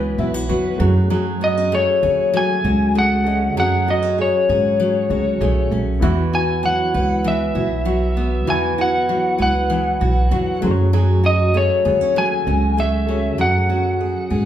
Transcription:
Already playing: upright bass C#2, steel-string acoustic guitar E3 F#3 B3 F#4 B4, nylon-string guitar E3 B3 E4 F#4, reed electric piano B3 E4 F#4 B4, electric slide guitar B4
0.18 upright bass B1, reed electric piano B3 E4 F#4 E5, steel-string acoustic guitar E4, nylon-string guitar E4
0.34 steel-string acoustic guitar F#4
0.49 upright bass E2, steel-string acoustic guitar F#3, nylon-string guitar F#4
0.78 upright bass F#2, steel-string acoustic guitar F#3, nylon-string guitar F#3, reed electric piano A3 F#4 G#4
0.82 reed electric piano C#5
1.10 steel-string acoustic guitar F#3, nylon-string guitar F#3 G#4
1.41 nylon-string guitar B3, steel-string acoustic guitar F#4, electric slide guitar D#5
1.57 nylon-string guitar C#4
1.72 steel-string acoustic guitar A3, nylon-string guitar G#4, electric slide guitar C#5
2.03 upright bass D#2, nylon-string guitar C#4, steel-string acoustic guitar G#4
2.34 steel-string acoustic guitar F#3, nylon-string guitar A3, electric slide guitar G#5
2.64 upright bass C#2, nylon-string guitar C#4, steel-string acoustic guitar F#4
2.95 steel-string acoustic guitar A3, nylon-string guitar G#4, electric slide guitar F#5
3.24 steel-string acoustic guitar C#4, reed electric piano F#4 G#4 A4 D#5
3.56 upright bass F#2, nylon-string guitar F#3 G#4, steel-string acoustic guitar F#3, electric slide guitar F#5
3.87 nylon-string guitar B3, steel-string acoustic guitar F#4, electric slide guitar D#5
4.02 nylon-string guitar C#4
4.18 nylon-string guitar G#4, electric slide guitar C#5
4.49 upright bass G#2, nylon-string guitar C#4, steel-string acoustic guitar G#4
4.80 steel-string acoustic guitar F#3
5.09 upright bass C#2, reed electric piano A3 F#4 G#4 C#5, nylon-string guitar C#4, steel-string acoustic guitar F#4
5.41 upright bass B1, steel-string acoustic guitar A3, nylon-string guitar G#4
5.71 upright bass B1, nylon-string guitar A3, steel-string acoustic guitar C#4
6.00 upright bass E2, nylon-string guitar E3 F#4, steel-string acoustic guitar E3, reed electric piano B3 E4 F#4
6.04 reed electric piano E5
6.33 nylon-string guitar E4, steel-string acoustic guitar F#4, electric slide guitar G#5
6.63 steel-string acoustic guitar F#3, nylon-string guitar F#4, electric slide guitar F#5
6.94 upright bass C#2, nylon-string guitar E4, steel-string acoustic guitar B4
7.24 steel-string acoustic guitar E3, nylon-string guitar B3, electric slide guitar E5
7.55 upright bass B1, nylon-string guitar E4, steel-string acoustic guitar F#4
7.85 steel-string acoustic guitar F#3, nylon-string guitar F#4
8.17 steel-string acoustic guitar B3, nylon-string guitar B3
8.45 upright bass E2, steel-string acoustic guitar E3, nylon-string guitar E3 F#4, reed electric piano B3 E4 F#4 E5
8.50 electric slide guitar G#5
8.78 nylon-string guitar E4, steel-string acoustic guitar F#4, electric slide guitar F#5
9.09 steel-string acoustic guitar F#3, nylon-string guitar F#4
9.38 upright bass C#2, nylon-string guitar E4, steel-string acoustic guitar B4, electric slide guitar F#5
9.70 steel-string acoustic guitar E3, nylon-string guitar B3
10.01 upright bass B1, nylon-string guitar E4, steel-string acoustic guitar F#4
10.31 upright bass E2, steel-string acoustic guitar F#3, nylon-string guitar F#4
10.61 upright bass F#2, steel-string acoustic guitar F#3, nylon-string guitar F#3, reed electric piano A3 F#4 G#4 C5
10.71 reed electric piano C#5
10.93 steel-string acoustic guitar F#3, nylon-string guitar F#3 G#4
11.24 nylon-string guitar C#4, steel-string acoustic guitar F#4, electric slide guitar D#5
11.54 steel-string acoustic guitar A3, nylon-string guitar G#4, electric slide guitar C#5
11.85 upright bass D#2, nylon-string guitar B3, steel-string acoustic guitar G#4
12.01 nylon-string guitar C#4
12.16 steel-string acoustic guitar F#3, nylon-string guitar A3, electric slide guitar G#5
12.47 upright bass C#2, nylon-string guitar C#4, steel-string acoustic guitar F#4
12.77 steel-string acoustic guitar A3, nylon-string guitar G#4, electric slide guitar E5
13.07 steel-string acoustic guitar C#4, reed electric piano F#4 G#4 A4 C#5
13.38 upright bass F#2, steel-string acoustic guitar F#3, nylon-string guitar F#3 G#4, electric slide guitar F#5
13.70 nylon-string guitar C#4, steel-string acoustic guitar F#4
14.01 nylon-string guitar G#4
14.30 upright bass G#2, nylon-string guitar C#4, steel-string acoustic guitar G#4

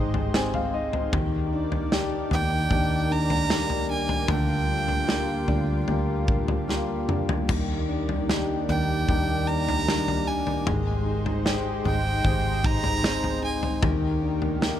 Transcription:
Already playing: fingered electric bass G#1, grand piano G#3 G4 G#4 C5, analog synth pad G#3 D#4 C5, steel-string acoustic guitar G#3 D#4 G4
0.14 floor tom
0.34 steel-string acoustic guitar C4, grand piano G4 G#4 C5 G#5, snare
0.54 grand piano F5, floor tom
0.74 steel-string acoustic guitar D#4, grand piano D#5
0.93 floor tom
1.13 fingered electric bass D#2, steel-string acoustic guitar D#3 G4, grand piano D#3, analog synth pad D#3 A#3 D5, kick, floor tom
1.53 steel-string acoustic guitar D4
1.72 floor tom
1.91 grand piano D4 D#4 G4, steel-string acoustic guitar G4, snare
2.31 fingered electric bass D#2, steel-string acoustic guitar D4, violin G5, floor tom
2.70 fingered electric bass D#2, grand piano D4 D#4 G4, kick, floor tom
3.11 steel-string acoustic guitar D4, violin A#5
3.30 floor tom
3.50 grand piano G3 D4 D#4, steel-string acoustic guitar A#3, snare
3.70 floor tom
3.89 steel-string acoustic guitar D4, violin G#5
4.09 floor tom
4.28 fingered electric bass D2, grand piano D3, steel-string acoustic guitar D3 F4, analog synth pad G3 F4, violin G5, floor tom
4.69 steel-string acoustic guitar D4
4.88 floor tom
5.08 grand piano A#3 F4 G4, steel-string acoustic guitar F4, snare
5.48 fingered electric bass D2, steel-string acoustic guitar D4, floor tom
5.88 fingered electric bass D2, grand piano A#3 F4 G4, steel-string acoustic guitar F4, floor tom
6.28 steel-string acoustic guitar D4, kick
6.48 floor tom
6.68 steel-string acoustic guitar A#3, grand piano A#3 F4 G4, snare
7.08 steel-string acoustic guitar D4, mid tom
7.29 floor tom
7.49 fingered electric bass D#2, steel-string acoustic guitar D#3 G4, grand piano D#3, analog synth pad D#3 A#3 D5, kick, floor tom, crash
7.89 steel-string acoustic guitar D4
8.09 floor tom
8.29 grand piano D4 D#4 G4, steel-string acoustic guitar G4, snare
8.69 fingered electric bass D#2, steel-string acoustic guitar D4, violin G5, floor tom
9.08 fingered electric bass D#2, grand piano D4 D#4 G4, kick, floor tom
9.47 steel-string acoustic guitar D4, violin A#5
9.69 floor tom
9.88 grand piano G3 D4 D#4, steel-string acoustic guitar A#3, snare
10.08 floor tom
10.28 steel-string acoustic guitar D4, violin G#5
10.47 floor tom
10.66 fingered electric bass G#1, analog synth pad G#3 D#4 C5, steel-string acoustic guitar G#3 G4, grand piano G#3, floor tom
11.06 steel-string acoustic guitar D#4
11.26 floor tom
11.45 grand piano G4 G#4 C5, steel-string acoustic guitar G4, snare
11.85 fingered electric bass G#1, steel-string acoustic guitar D#4, violin G5, floor tom
12.24 fingered electric bass G#1, grand piano G4 G#4 C5, kick, floor tom
12.64 steel-string acoustic guitar D#4, violin A#5, kick
12.84 floor tom
13.03 steel-string acoustic guitar C4, grand piano D#4 G#4 C5, snare
13.24 floor tom
13.43 steel-string acoustic guitar D#4, violin G#5
13.63 floor tom
13.82 fingered electric bass D#2, analog synth pad D#3 A#3 G4, steel-string acoustic guitar D#3 G4, grand piano D#3, kick, floor tom
14.22 steel-string acoustic guitar D4
14.42 floor tom
14.61 grand piano A#3 D#4 G4, steel-string acoustic guitar G4, snare

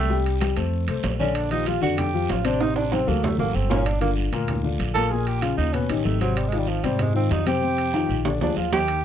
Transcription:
Already playing: upright bass C2, tenor saxophone A3
0.10 grand piano G3 G4 G5, high conga, long guiro
0.26 high conga, high timbale
0.41 grand piano G3 G4 G5, high conga, high timbale, low timbale, short guiro
0.56 upright bass F2, grand piano A3 A4 C5, high timbale, short guiro
0.73 high conga, long guiro
0.88 upright bass C2, grand piano A3 A4 C5, high conga, high timbale
1.03 upright bass A#1, high conga, high timbale, low timbale, short guiro
1.20 grand piano D3 D4 D5, tenor saxophone C#4, high conga, short guiro
1.35 tenor saxophone D4, high conga, high timbale, long guiro
1.51 grand piano F3 F4 G4, tenor saxophone D#4, high conga, high timbale
1.66 grand piano F3 F4 G4, tenor saxophone F4, high conga, high timbale, low timbale, short guiro
1.81 upright bass F2, grand piano D3 D4 D5, tenor saxophone F#4, short guiro
1.97 tenor saxophone G4, high conga, low conga, high timbale, long guiro
2.14 grand piano F3 F4 G4, high conga
2.29 upright bass A1, tenor saxophone F4, high conga, high timbale, low timbale, short guiro
2.45 grand piano C3 C4 C5, tenor saxophone D4, high timbale, short guiro
2.60 grand piano C3 C4 C5, tenor saxophone D#4, high conga, high timbale, long guiro
2.76 tenor saxophone D4, high conga, high timbale
2.91 grand piano C3 C4 C5, tenor saxophone C4, high conga, high timbale, short guiro
3.07 upright bass D2, grand piano F#3 F#4 A4, tenor saxophone A#3, high conga, short guiro
3.23 tenor saxophone A3, low conga, low timbale, long guiro
3.38 upright bass A1, grand piano F#3 F#4 A4, tenor saxophone A#3, low conga
3.54 upright bass G1, tenor saxophone C4, short guiro
3.69 grand piano A#2 A#3 A#4, tenor saxophone C#4, low conga, low timbale, short guiro
3.86 tenor saxophone D4, high conga, high timbale, long guiro
4.01 grand piano D3 D4 F4, tenor saxophone A#3, high conga, high timbale
4.16 high conga, short guiro
4.32 upright bass D2, grand piano A#2 A#3 A#4, high conga, high timbale, short guiro
4.48 high conga, low conga, high timbale, long guiro
4.63 grand piano D3 D4 F4, high conga, low conga
4.79 upright bass A#1, high conga, high timbale, short guiro
4.94 grand piano A#2 A#3 A#4, tenor saxophone A4, high conga, high timbale, short guiro
5.10 grand piano A#2 A#3 A#4, tenor saxophone G#4, high conga, long guiro
5.27 tenor saxophone G4, high conga, high timbale
5.42 grand piano C#3 C#4 F4, tenor saxophone F4, high conga, high timbale, short guiro
5.57 upright bass D#2, tenor saxophone D#4, high conga, short guiro
5.73 grand piano B2 B3 B4, tenor saxophone C#4, high conga, high timbale, long guiro
5.89 upright bass A1, grand piano D#3 D#4 G4, high conga, high timbale
6.04 upright bass G#1, tenor saxophone A3, high conga, short guiro
6.20 grand piano C3 C4 C5, tenor saxophone F#3, high conga, high timbale, short guiro
6.36 tenor saxophone G3, high conga, high timbale, long guiro
6.48 tenor saxophone G#3
6.52 grand piano D#3 D#4 F4, high conga, high timbale
6.57 tenor saxophone G3
6.67 tenor saxophone F3, high conga, short guiro
6.83 upright bass G#2, grand piano C3 C4 C5, tenor saxophone G3, high conga, high timbale, short guiro
6.99 tenor saxophone G#3, high conga, low conga, high timbale, long guiro
7.14 grand piano D#3 D#4 F4, tenor saxophone C4, high conga
7.30 upright bass F2, tenor saxophone D#4, high conga, high timbale, low timbale, short guiro
7.46 grand piano C3 C4 C5, tenor saxophone G4, high conga, high timbale, short guiro
7.62 grand piano C3 C4 C5, high conga, long guiro
7.78 high conga, high timbale
7.93 grand piano D#3 D#4 F4, high conga, high timbale, short guiro
8.09 upright bass A#1, high conga, short guiro
8.25 grand piano D3 D4 D5, high conga, low timbale, long guiro
8.41 upright bass D2, grand piano F3 F4 G#4, tenor saxophone D4, high conga, low timbale
8.56 upright bass D#2, tenor saxophone F4, high conga, short guiro
8.72 grand piano D#3 D#4 D#5, tenor saxophone G4, high conga, low timbale, short guiro
8.88 high timbale, long guiro

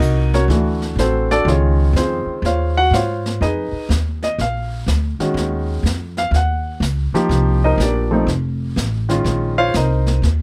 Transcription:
Already playing: grand piano D#4 F#4 A#4 D#5
0.00 upright bass C2, hi-hat pedal
0.34 grand piano C#4 F#4 A#4 C#5, snare
0.48 upright bass D2, grand piano E3 A3 D4 F#4, brush sweep, snare
0.82 snare
0.96 upright bass A1, grand piano A4 C5, snare, hi-hat pedal
1.00 grand piano C4 F#4
1.31 grand piano D4 F#4 A4 D5, snare
1.45 upright bass C#2, grand piano C#3 D#3 G#3 F4 C#5, brush sweep, snare
1.49 grand piano C#4 G#4
1.93 upright bass F2, grand piano F4 G#4 C5, snare, hi-hat pedal
1.98 grand piano C4
2.26 muted upright bass stroke
2.42 upright bass D#2, grand piano F4 F5, brush sweep, snare
2.46 grand piano C5 C#5
2.77 grand piano F#4 F#5
2.91 upright bass G#2, grand piano C5 C#5 F5, snare, hi-hat pedal
2.95 grand piano F4
3.26 snare
3.41 upright bass F2, grand piano D#4 G#4 B4 D#5, brush sweep, snare
3.72 muted upright bass stroke
3.89 upright bass D#2, snare, hi-hat pedal
4.23 grand piano D#5, snare
4.38 upright bass A#1, grand piano F5, brush sweep, snare
4.86 upright bass D2, snare, hi-hat pedal
5.19 grand piano D#3 G#3 C#4 F#4, muted upright bass stroke, snare
5.34 upright bass D#2, brush sweep, snare
5.83 upright bass F2, snare, hi-hat pedal
6.17 grand piano F5, snare
6.31 upright bass D#2, grand piano F5, brush sweep, snare
6.36 grand piano F#5
6.80 upright bass C#2, snare, hi-hat pedal
7.13 grand piano F3 A#3 D#4 G4, muted upright bass stroke, snare
7.29 upright bass C2, brush sweep, snare
7.64 grand piano D#4 A#4 C5 D#5
7.78 upright bass A#1, grand piano A#4, snare, hi-hat pedal
7.82 grand piano D4 G4 D5
8.11 grand piano F3 A3 C4 D#4
8.27 upright bass F1, brush sweep, snare
8.76 upright bass A1, snare, hi-hat pedal
9.09 grand piano D#3 G#3 C#4 F4, snare
9.24 upright bass A#1, brush sweep, snare
9.58 grand piano F4 C5 C#5 F5
9.74 upright bass C2, grand piano D#4 A#4 C5 D#5, snare, hi-hat pedal
10.06 snare
10.22 upright bass D#2, brush sweep, snare

